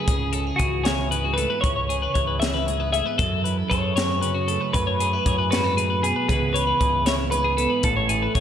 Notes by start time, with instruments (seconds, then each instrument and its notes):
Already playing: clean electric guitar G#4
0.06 fingered electric bass C#2, clean electric guitar C#3 G#4, kick, closed hi-hat
0.33 clean electric guitar C#4 A4, closed hi-hat
0.46 clean electric guitar E4 G#4
0.56 fingered electric bass C#2, clean electric guitar E3 F#4 G#4, kick, closed hi-hat
0.61 clean electric guitar E4
0.84 clean electric guitar E4 G#4 C#5, snare, closed hi-hat
1.11 clean electric guitar G#2 E4 B4, closed hi-hat
1.25 clean electric guitar F#4
1.34 clean electric guitar A3 A4 B4
1.38 closed hi-hat
1.50 clean electric guitar B3 B4
1.61 fingered electric bass C#2, clean electric guitar C#3 C#5, kick, closed hi-hat
1.76 clean electric guitar C#5
1.89 clean electric guitar C#4 G#4, closed hi-hat
2.02 clean electric guitar E4 B4
2.14 fingered electric bass C#2, clean electric guitar E3 G#4 C#5, kick, closed hi-hat
2.27 clean electric guitar B4
2.40 clean electric guitar C#4 G#4 E5, snare, closed hi-hat
2.54 clean electric guitar E4 B4
2.67 clean electric guitar G#2 G#4, closed hi-hat
2.80 clean electric guitar B4
2.93 clean electric guitar A3 G#4 E5, closed hi-hat
3.06 clean electric guitar B3 B4
3.18 fingered electric bass F#2, clean electric guitar F#2 A4, kick, closed hi-hat
3.44 clean electric guitar E4 B4, closed hi-hat
3.58 clean electric guitar A4
3.70 fingered electric bass F#2, clean electric guitar F#3 G#4 A4 C#5, kick, closed hi-hat
3.96 clean electric guitar C#4 C#5, snare, closed hi-hat
4.11 clean electric guitar E4
4.22 clean electric guitar C#3 G#4 B4, closed hi-hat
4.34 clean electric guitar F#4
4.48 clean electric guitar A3 A4, closed hi-hat
4.61 clean electric guitar B4
4.73 clean electric guitar F#2 B4, fingered electric bass F#2, kick, closed hi-hat
4.87 clean electric guitar C#5
5.00 clean electric guitar C#4 G#4, closed hi-hat
5.13 clean electric guitar E4 B4
5.26 fingered electric bass F#2, clean electric guitar F#3 G#4 C#5, kick, closed hi-hat
5.38 clean electric guitar B4
5.51 clean electric guitar G#2 F#4 B4, snare, closed hi-hat
5.64 clean electric guitar A4
5.77 clean electric guitar A2 G#4, closed hi-hat
5.90 clean electric guitar B4
6.03 clean electric guitar B2 G#4, closed hi-hat
6.16 clean electric guitar B4
6.29 fingered electric bass C#2, clean electric guitar C#3 E3 B3 E4 G#4 B4, kick, closed hi-hat
6.53 clean electric guitar C#4 B4 C#5, closed hi-hat
6.67 clean electric guitar E4 B4
6.80 fingered electric bass C#2, clean electric guitar E3 G#4 B4, kick, closed hi-hat
7.06 clean electric guitar E4 C#5, snare, closed hi-hat
7.31 clean electric guitar G#2 G#4 B4, closed hi-hat
7.44 clean electric guitar G#4
7.57 clean electric guitar B3 A4, closed hi-hat
7.70 clean electric guitar B4
7.83 fingered electric bass A1, clean electric guitar A2 A4, kick, closed hi-hat
7.97 clean electric guitar C#5
8.09 clean electric guitar E4 G#4, closed hi-hat
8.22 clean electric guitar B4
8.35 fingered electric bass A1, clean electric guitar E3 F#4 C#5, kick, closed hi-hat